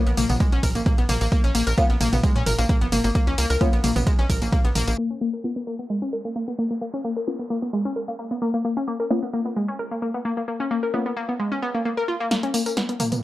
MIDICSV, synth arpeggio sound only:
0, 0, Header, 1, 2, 480
1, 0, Start_track
1, 0, Tempo, 458015
1, 1382, Time_signature, 4, 2, 24, 8
1, 13866, End_track
2, 0, Start_track
2, 0, Title_t, "Synth arpeggio sound"
2, 0, Program_c, 0, 84
2, 69, Note_on_c, 0, 59, 79
2, 111, Note_off_c, 0, 59, 0
2, 182, Note_on_c, 0, 58, 105
2, 260, Note_off_c, 0, 58, 0
2, 309, Note_on_c, 0, 59, 76
2, 351, Note_off_c, 0, 59, 0
2, 423, Note_on_c, 0, 56, 87
2, 539, Note_off_c, 0, 56, 0
2, 549, Note_on_c, 0, 61, 109
2, 618, Note_off_c, 0, 61, 0
2, 662, Note_on_c, 0, 70, 76
2, 778, Note_off_c, 0, 70, 0
2, 789, Note_on_c, 0, 58, 76
2, 858, Note_off_c, 0, 58, 0
2, 902, Note_on_c, 0, 58, 88
2, 980, Note_off_c, 0, 58, 0
2, 1029, Note_on_c, 0, 59, 79
2, 1070, Note_off_c, 0, 59, 0
2, 1142, Note_on_c, 0, 58, 107
2, 1219, Note_off_c, 0, 58, 0
2, 1269, Note_on_c, 0, 58, 78
2, 1310, Note_off_c, 0, 58, 0
2, 1382, Note_on_c, 0, 58, 91
2, 1498, Note_off_c, 0, 58, 0
2, 1508, Note_on_c, 0, 61, 102
2, 1578, Note_off_c, 0, 61, 0
2, 1622, Note_on_c, 0, 58, 102
2, 1700, Note_off_c, 0, 58, 0
2, 1748, Note_on_c, 0, 70, 81
2, 1853, Note_off_c, 0, 70, 0
2, 1862, Note_on_c, 0, 59, 86
2, 1976, Note_off_c, 0, 59, 0
2, 1988, Note_on_c, 0, 59, 79
2, 2030, Note_off_c, 0, 59, 0
2, 2102, Note_on_c, 0, 58, 101
2, 2179, Note_off_c, 0, 58, 0
2, 2228, Note_on_c, 0, 59, 74
2, 2270, Note_off_c, 0, 59, 0
2, 2342, Note_on_c, 0, 56, 83
2, 2458, Note_off_c, 0, 56, 0
2, 2468, Note_on_c, 0, 61, 101
2, 2538, Note_off_c, 0, 61, 0
2, 2582, Note_on_c, 0, 70, 75
2, 2698, Note_off_c, 0, 70, 0
2, 2708, Note_on_c, 0, 58, 78
2, 2778, Note_off_c, 0, 58, 0
2, 2822, Note_on_c, 0, 58, 89
2, 2899, Note_off_c, 0, 58, 0
2, 2949, Note_on_c, 0, 59, 81
2, 2990, Note_off_c, 0, 59, 0
2, 3062, Note_on_c, 0, 58, 104
2, 3140, Note_off_c, 0, 58, 0
2, 3189, Note_on_c, 0, 58, 77
2, 3230, Note_off_c, 0, 58, 0
2, 3302, Note_on_c, 0, 58, 93
2, 3418, Note_off_c, 0, 58, 0
2, 3429, Note_on_c, 0, 61, 100
2, 3498, Note_off_c, 0, 61, 0
2, 3542, Note_on_c, 0, 58, 105
2, 3620, Note_off_c, 0, 58, 0
2, 3669, Note_on_c, 0, 70, 80
2, 3773, Note_off_c, 0, 70, 0
2, 3782, Note_on_c, 0, 59, 82
2, 3896, Note_off_c, 0, 59, 0
2, 3909, Note_on_c, 0, 59, 75
2, 3950, Note_off_c, 0, 59, 0
2, 4022, Note_on_c, 0, 58, 101
2, 4099, Note_off_c, 0, 58, 0
2, 4149, Note_on_c, 0, 59, 75
2, 4190, Note_off_c, 0, 59, 0
2, 4262, Note_on_c, 0, 56, 85
2, 4378, Note_off_c, 0, 56, 0
2, 4388, Note_on_c, 0, 61, 108
2, 4458, Note_off_c, 0, 61, 0
2, 4502, Note_on_c, 0, 70, 81
2, 4618, Note_off_c, 0, 70, 0
2, 4628, Note_on_c, 0, 58, 75
2, 4698, Note_off_c, 0, 58, 0
2, 4742, Note_on_c, 0, 58, 91
2, 4819, Note_off_c, 0, 58, 0
2, 4868, Note_on_c, 0, 59, 77
2, 4910, Note_off_c, 0, 59, 0
2, 4982, Note_on_c, 0, 58, 107
2, 5059, Note_off_c, 0, 58, 0
2, 5109, Note_on_c, 0, 58, 80
2, 5150, Note_off_c, 0, 58, 0
2, 5222, Note_on_c, 0, 58, 88
2, 5338, Note_off_c, 0, 58, 0
2, 5349, Note_on_c, 0, 61, 98
2, 5418, Note_off_c, 0, 61, 0
2, 5462, Note_on_c, 0, 58, 100
2, 5540, Note_off_c, 0, 58, 0
2, 5589, Note_on_c, 0, 70, 77
2, 5693, Note_off_c, 0, 70, 0
2, 5702, Note_on_c, 0, 59, 79
2, 5816, Note_off_c, 0, 59, 0
2, 5829, Note_on_c, 0, 59, 75
2, 5870, Note_off_c, 0, 59, 0
2, 5942, Note_on_c, 0, 58, 99
2, 6019, Note_off_c, 0, 58, 0
2, 6069, Note_on_c, 0, 59, 73
2, 6110, Note_off_c, 0, 59, 0
2, 6182, Note_on_c, 0, 56, 84
2, 6298, Note_off_c, 0, 56, 0
2, 6309, Note_on_c, 0, 61, 101
2, 6378, Note_off_c, 0, 61, 0
2, 6422, Note_on_c, 0, 70, 75
2, 6538, Note_off_c, 0, 70, 0
2, 6549, Note_on_c, 0, 58, 73
2, 6618, Note_off_c, 0, 58, 0
2, 6662, Note_on_c, 0, 58, 83
2, 6740, Note_off_c, 0, 58, 0
2, 6789, Note_on_c, 0, 59, 80
2, 6830, Note_off_c, 0, 59, 0
2, 6902, Note_on_c, 0, 58, 104
2, 6979, Note_off_c, 0, 58, 0
2, 7028, Note_on_c, 0, 58, 73
2, 7070, Note_off_c, 0, 58, 0
2, 7141, Note_on_c, 0, 58, 86
2, 7258, Note_off_c, 0, 58, 0
2, 7269, Note_on_c, 0, 61, 95
2, 7338, Note_off_c, 0, 61, 0
2, 7382, Note_on_c, 0, 58, 100
2, 7460, Note_off_c, 0, 58, 0
2, 7509, Note_on_c, 0, 70, 78
2, 7613, Note_off_c, 0, 70, 0
2, 7622, Note_on_c, 0, 59, 79
2, 7736, Note_off_c, 0, 59, 0
2, 7749, Note_on_c, 0, 59, 74
2, 7790, Note_off_c, 0, 59, 0
2, 7862, Note_on_c, 0, 58, 102
2, 7940, Note_off_c, 0, 58, 0
2, 7989, Note_on_c, 0, 59, 69
2, 8031, Note_off_c, 0, 59, 0
2, 8103, Note_on_c, 0, 56, 84
2, 8219, Note_off_c, 0, 56, 0
2, 8229, Note_on_c, 0, 61, 100
2, 8298, Note_off_c, 0, 61, 0
2, 8342, Note_on_c, 0, 70, 75
2, 8458, Note_off_c, 0, 70, 0
2, 8469, Note_on_c, 0, 58, 75
2, 8538, Note_off_c, 0, 58, 0
2, 8582, Note_on_c, 0, 58, 83
2, 8660, Note_off_c, 0, 58, 0
2, 8709, Note_on_c, 0, 59, 76
2, 8750, Note_off_c, 0, 59, 0
2, 8822, Note_on_c, 0, 58, 107
2, 8900, Note_off_c, 0, 58, 0
2, 8948, Note_on_c, 0, 58, 79
2, 8990, Note_off_c, 0, 58, 0
2, 9062, Note_on_c, 0, 58, 83
2, 9178, Note_off_c, 0, 58, 0
2, 9189, Note_on_c, 0, 61, 99
2, 9258, Note_off_c, 0, 61, 0
2, 9302, Note_on_c, 0, 58, 104
2, 9380, Note_off_c, 0, 58, 0
2, 9429, Note_on_c, 0, 70, 73
2, 9533, Note_off_c, 0, 70, 0
2, 9542, Note_on_c, 0, 59, 78
2, 9658, Note_off_c, 0, 59, 0
2, 9669, Note_on_c, 0, 59, 74
2, 9710, Note_off_c, 0, 59, 0
2, 9782, Note_on_c, 0, 58, 97
2, 9860, Note_off_c, 0, 58, 0
2, 9909, Note_on_c, 0, 59, 71
2, 9951, Note_off_c, 0, 59, 0
2, 10022, Note_on_c, 0, 56, 84
2, 10138, Note_off_c, 0, 56, 0
2, 10149, Note_on_c, 0, 61, 99
2, 10218, Note_off_c, 0, 61, 0
2, 10262, Note_on_c, 0, 70, 75
2, 10378, Note_off_c, 0, 70, 0
2, 10389, Note_on_c, 0, 58, 72
2, 10458, Note_off_c, 0, 58, 0
2, 10502, Note_on_c, 0, 58, 85
2, 10580, Note_off_c, 0, 58, 0
2, 10629, Note_on_c, 0, 59, 77
2, 10670, Note_off_c, 0, 59, 0
2, 10742, Note_on_c, 0, 58, 104
2, 10820, Note_off_c, 0, 58, 0
2, 10869, Note_on_c, 0, 58, 73
2, 10910, Note_off_c, 0, 58, 0
2, 10982, Note_on_c, 0, 58, 85
2, 11099, Note_off_c, 0, 58, 0
2, 11108, Note_on_c, 0, 61, 97
2, 11178, Note_off_c, 0, 61, 0
2, 11222, Note_on_c, 0, 58, 98
2, 11300, Note_off_c, 0, 58, 0
2, 11349, Note_on_c, 0, 70, 75
2, 11453, Note_off_c, 0, 70, 0
2, 11462, Note_on_c, 0, 59, 83
2, 11576, Note_off_c, 0, 59, 0
2, 11589, Note_on_c, 0, 59, 75
2, 11630, Note_off_c, 0, 59, 0
2, 11702, Note_on_c, 0, 58, 100
2, 11780, Note_off_c, 0, 58, 0
2, 11828, Note_on_c, 0, 59, 71
2, 11870, Note_off_c, 0, 59, 0
2, 11942, Note_on_c, 0, 56, 81
2, 12059, Note_off_c, 0, 56, 0
2, 12069, Note_on_c, 0, 61, 99
2, 12138, Note_off_c, 0, 61, 0
2, 12182, Note_on_c, 0, 59, 100
2, 12260, Note_off_c, 0, 59, 0
2, 12309, Note_on_c, 0, 58, 76
2, 12378, Note_off_c, 0, 58, 0
2, 12422, Note_on_c, 0, 58, 84
2, 12469, Note_off_c, 0, 58, 0
2, 12549, Note_on_c, 0, 70, 104
2, 12618, Note_off_c, 0, 70, 0
2, 12662, Note_on_c, 0, 65, 104
2, 12740, Note_off_c, 0, 65, 0
2, 12789, Note_on_c, 0, 58, 97
2, 12858, Note_off_c, 0, 58, 0
2, 12902, Note_on_c, 0, 58, 86
2, 13018, Note_off_c, 0, 58, 0
2, 13029, Note_on_c, 0, 61, 96
2, 13098, Note_off_c, 0, 61, 0
2, 13142, Note_on_c, 0, 58, 105
2, 13220, Note_off_c, 0, 58, 0
2, 13269, Note_on_c, 0, 70, 76
2, 13373, Note_off_c, 0, 70, 0
2, 13382, Note_on_c, 0, 59, 81
2, 13498, Note_off_c, 0, 59, 0
2, 13509, Note_on_c, 0, 59, 79
2, 13550, Note_off_c, 0, 59, 0
2, 13622, Note_on_c, 0, 58, 98
2, 13700, Note_off_c, 0, 58, 0
2, 13749, Note_on_c, 0, 59, 72
2, 13791, Note_off_c, 0, 59, 0
2, 13866, End_track
0, 0, End_of_file